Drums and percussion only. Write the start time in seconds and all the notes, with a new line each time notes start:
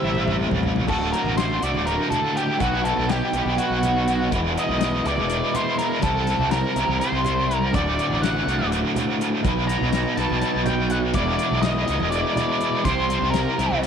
0.15 mid tom
0.28 mid tom, low conga
0.39 high conga
0.51 floor tom, high conga
0.63 floor tom, low conga
0.76 floor tom, low conga
0.87 kick, crash, high conga, low conga
1.14 closed hi-hat
1.26 low conga
1.38 snare, closed hi-hat
1.63 closed hi-hat
1.75 high conga
1.87 closed hi-hat
2.11 closed hi-hat, low conga
2.37 closed hi-hat
2.60 kick, closed hi-hat, high conga, low conga
2.85 closed hi-hat
2.97 low conga
3.09 snare, closed hi-hat
3.33 closed hi-hat
3.46 high conga
3.58 closed hi-hat
3.83 closed hi-hat, low conga
4.08 snare, closed hi-hat
4.32 kick, closed hi-hat, high conga, low conga
4.57 closed hi-hat, low conga
4.69 low conga
4.81 snare, closed hi-hat
5.06 snare, closed hi-hat
5.18 high conga
5.30 closed hi-hat
5.55 closed hi-hat, low conga
5.79 snare, closed hi-hat
6.02 kick, closed hi-hat, high conga
6.15 low conga
6.27 snare, closed hi-hat, low conga
6.39 low conga
6.51 snare, closed hi-hat
6.76 closed hi-hat
6.88 high conga
7.01 closed hi-hat
7.25 closed hi-hat, low conga
7.37 low conga
7.51 closed hi-hat
7.74 kick, closed hi-hat, high conga, low conga
7.99 closed hi-hat
8.10 low conga
8.23 snare, closed hi-hat
8.49 closed hi-hat
8.59 high conga
8.72 closed hi-hat
8.96 closed hi-hat, low conga
9.21 closed hi-hat
9.45 kick, closed hi-hat, high conga, low conga
9.69 closed hi-hat
9.82 low conga
9.93 snare, closed hi-hat
10.17 snare, closed hi-hat
10.30 high conga
10.42 closed hi-hat
10.66 closed hi-hat, low conga
10.90 closed hi-hat
11.14 kick, closed hi-hat, high conga, low conga
11.39 closed hi-hat
11.51 low conga
11.63 snare, closed hi-hat
11.88 closed hi-hat
12.00 high conga
12.12 closed hi-hat
12.36 snare, closed hi-hat, low conga
12.61 closed hi-hat
12.85 kick, closed hi-hat, high conga, low conga
13.10 closed hi-hat
13.22 low conga
13.34 snare, closed hi-hat
13.47 low conga
13.59 closed hi-hat
13.70 high conga
13.83 closed hi-hat, low conga